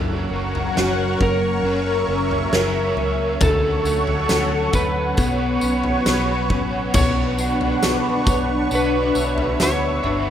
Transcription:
Already playing: fingered electric bass F#1, overdriven electric guitar F#2 C#3 F#3 A#3 C#4, clean electric guitar F#2, analog synth pad A#4 C#5 F#5 C#6
0.31 fingered electric bass F#1, clean electric guitar A#3
0.55 floor tom
0.76 fingered electric bass F#1, clean electric guitar C#4, electric slide guitar F#4, snare
1.21 fingered electric bass F#1, clean electric guitar A#3, electric slide guitar A#4, kick
1.63 fingered electric bass F#1, overdriven electric guitar C#3 F#3, clean electric guitar C#3, analog synth pad E5
1.68 overdriven electric guitar A#3 C#4
2.08 fingered electric bass F#1, clean electric guitar C#4
2.31 floor tom
2.53 fingered electric bass F#1, overdriven electric guitar C#3 F#3 A#3, clean electric guitar F#3, electric slide guitar A#4, snare
2.58 overdriven electric guitar C#4
2.96 fingered electric bass C#2, clean electric guitar C#4, floor tom
3.40 fingered electric bass D2, overdriven electric guitar D3 F#3, clean electric guitar D3, analog synth pad A4 C#5 F#5 C#6, electric slide guitar A4, kick, floor tom, tambourine
3.45 overdriven electric guitar A3 C#4
3.85 fingered electric bass D2, clean electric guitar A3, tambourine
4.07 floor tom
4.29 fingered electric bass D2, clean electric guitar C#4, snare, tambourine
4.73 fingered electric bass D2, clean electric guitar A3, electric slide guitar B4, kick, tambourine
5.17 fingered electric bass B1, overdriven electric guitar B2 F#3 B3, clean electric guitar B2, analog synth pad B4 C#5 C#6, kick, tambourine
5.22 overdriven electric guitar C#4
5.61 fingered electric bass B1, clean electric guitar C#4, tambourine
5.84 floor tom
6.06 fingered electric bass B1, overdriven electric guitar B2 F#3 B3, clean electric guitar F#3, snare, tambourine
6.11 overdriven electric guitar C#4
6.50 fingered electric bass A1, clean electric guitar C#4, kick, floor tom
6.93 fingered electric bass B1, overdriven electric guitar B2 F#3 B3, clean electric guitar B2, analog synth pad D4 B4 F#5 C#6, electric slide guitar C#5, kick, floor tom, crash, tambourine
6.98 overdriven electric guitar D4 F#4 C#5
7.38 clean electric guitar D4, tambourine
7.61 floor tom
7.83 clean electric guitar F#4, snare, tambourine
8.26 fingered electric bass B1, clean electric guitar C#5, kick, tambourine
8.71 fingered electric bass B1, overdriven electric guitar B3 D4 F#4, clean electric guitar F#4, analog synth pad E5, tambourine
8.75 electric slide guitar B4, overdriven electric guitar C#5
9.15 fingered electric bass B1, clean electric guitar C#5, tambourine
9.38 floor tom
9.60 fingered electric bass D2, clean electric guitar F#4, electric slide guitar C#5, snare, tambourine
10.03 fingered electric bass G1, clean electric guitar D4, overdriven electric guitar D4 F#4 C#5, floor tom
10.08 overdriven electric guitar B3
10.27 electric slide guitar B4

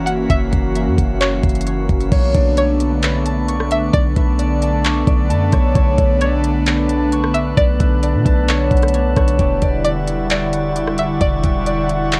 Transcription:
Already playing: 808-style bass F#1, analog synth pad E3 A#3 C#4 F#4, synth texture A#3 F#4 E5
0.06 synth pluck F#5, closed hi-hat
0.30 808-style bass F#1, synth pluck E5, kick, closed hi-hat
0.53 808-style bass F#1, kick, closed hi-hat
0.75 closed hi-hat
0.87 808-style bass F#2
0.98 808-style bass F#1, kick, closed hi-hat
1.21 synth pluck C#5, clap, closed hi-hat
1.43 808-style bass F#1, kick, closed hi-hat
1.49 closed hi-hat
1.55 closed hi-hat
1.61 closed hi-hat
1.67 closed hi-hat
1.89 808-style bass F#1, kick, closed hi-hat
2.00 closed hi-hat
2.12 808-style bass B1, analog synth pad D3 A3 B3 D4, synth texture A3 D4 C#6, harp C#5, kick, closed hi-hat, crash
2.34 808-style bass B1, harp D4, kick, closed hi-hat
2.57 synth pluck C#5, closed hi-hat
2.80 closed hi-hat
3.03 harp B4, clap, closed hi-hat
3.26 harp A5, closed hi-hat
3.48 harp C#6, closed hi-hat
3.60 cross-stick
3.71 synth pluck E5, closed hi-hat
3.93 808-style bass B1, synth pluck D5, kick, closed hi-hat
4.16 808-style bass B1, harp B4, kick, closed hi-hat
4.39 harp D5, closed hi-hat
4.62 harp A5, closed hi-hat
4.84 harp C#6, clap, closed hi-hat
5.07 808-style bass B1, harp D5, kick, closed hi-hat
5.30 808-style bass F#2, harp A5, closed hi-hat
5.52 808-style bass B1, harp C#5, kick, cross-stick, closed hi-hat
5.75 808-style bass B1, synth texture B4, harp C#5, kick, closed hi-hat
5.98 808-style bass B1, harp D4, kick, closed hi-hat
6.21 synth pluck C#5, closed hi-hat
6.44 closed hi-hat
6.66 harp B4, clap, closed hi-hat
6.89 harp A5, closed hi-hat
7.12 harp C#6, closed hi-hat
7.24 cross-stick
7.34 synth pluck E5, closed hi-hat
7.57 808-style bass B1, synth pluck D5, kick, closed hi-hat
7.80 808-style bass B1, harp B4, kick, closed hi-hat
8.03 harp D4, closed hi-hat
8.14 808-style bass B2
8.26 808-style bass B1, harp A5, kick, closed hi-hat
8.48 harp C#5, synth pluck C#5, clap, closed hi-hat
8.71 808-style bass B1, harp F#5, kick, closed hi-hat
8.77 closed hi-hat
8.82 cross-stick, closed hi-hat
8.88 closed hi-hat
8.93 harp A5, closed hi-hat
9.16 808-style bass B1, harp C#5, kick, cross-stick, closed hi-hat
9.28 closed hi-hat
9.39 808-style bass E1, analog synth pad D3 G3 E4 F#5, synth texture G3 F#4 D5, harp G4, kick, closed hi-hat
9.62 808-style bass E1, harp D5, kick, closed hi-hat
9.84 synth pluck D5, closed hi-hat
10.08 closed hi-hat
10.30 harp D5, clap, closed hi-hat
10.53 harp F#5, closed hi-hat
10.76 harp G4, closed hi-hat
10.87 cross-stick
10.98 synth pluck E5, closed hi-hat
11.21 808-style bass E1, synth pluck D5, kick, closed hi-hat
11.44 808-style bass E1, harp G4, kick, closed hi-hat
11.66 harp D5, closed hi-hat
11.89 harp F#5, closed hi-hat
12.12 harp G4, clap, closed hi-hat

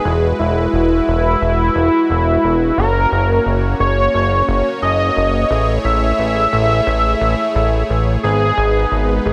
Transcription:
Already playing: supersaw synth G#3 B4, analog synth lead G#4
0.05 analog synth bass E1, supersaw synth E4 F#4
0.39 analog synth bass E1, analog synth lead E4
0.73 analog synth bass E1
1.07 analog synth bass E1
1.42 analog synth bass E1
1.76 analog synth bass E1
2.10 analog synth bass E1
2.44 analog synth bass E1
2.78 analog synth bass F#1, supersaw synth A#3 C#4 C#5, analog synth lead A#4
3.12 analog synth bass F#1
3.46 analog synth bass F#1
3.80 analog synth bass F#1, analog synth lead C#5
4.14 analog synth bass F#1
4.48 analog synth bass F#1
4.82 analog synth bass F#1, analog synth lead D#5
5.16 analog synth bass F#1
5.50 analog synth bass A1, supersaw synth A3 E4 G#4
5.84 analog synth bass A1, analog synth lead E5
6.19 analog synth bass A1
6.53 analog synth bass A1
6.87 analog synth bass A1
7.21 analog synth bass A1
7.55 analog synth bass A1
7.89 analog synth bass A1
8.23 analog synth bass G#1, supersaw synth G#3 B3 D#4 B4, analog synth lead G#4
8.58 analog synth bass G#1
8.92 analog synth bass G#1
9.25 analog synth bass G#1, analog synth lead G#4

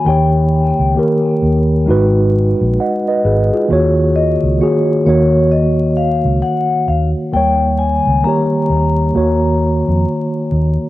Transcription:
0.05 fingered electric bass D#2, tine electric piano D#3 A#3 G4, vibraphone G5
0.09 tine electric piano C#5
0.79 fingered electric bass C#2
0.94 tine electric piano D#3 A#3 G4
0.99 tine electric piano A#4
1.43 fingered electric bass D#2
1.86 fingered electric bass G#1, tine electric piano G#3 D#4 F#4
1.91 tine electric piano B4
2.61 fingered electric bass A#1
2.80 tine electric piano D#5 F#5
3.08 tine electric piano B4 D#5
3.24 fingered electric bass G#1, tine electric piano G#4 B4
3.53 tine electric piano F4 G#4
3.68 fingered electric bass D#2, tine electric piano D#3 A#3 F#4
3.73 tine electric piano C#5
4.16 vibraphone D#5
4.43 fingered electric bass C#2
4.58 tine electric piano D#3 A#3 F#4, vibraphone C#5
4.63 tine electric piano G#4
5.05 fingered electric bass D#2, tine electric piano D#3 A#3 F#4, vibraphone C#5
5.09 tine electric piano C#5
5.51 vibraphone D#5
5.97 vibraphone F5
6.25 fingered electric bass C#2
6.42 vibraphone F#5
6.88 fingered electric bass D#2, vibraphone F5
7.32 fingered electric bass D#2, tine electric piano D#3 G3 A#3, vibraphone G5
7.36 tine electric piano C#5
7.79 vibraphone G#5
8.07 fingered electric bass C#2
8.24 tine electric piano D#3 A#3 G4, vibraphone A#5
8.28 tine electric piano C#5
8.70 fingered electric bass D#2
9.13 fingered electric bass D#2, tine electric piano D#3 A#3 F#4
9.17 tine electric piano C#5
9.88 fingered electric bass F2
10.52 fingered electric bass D#2

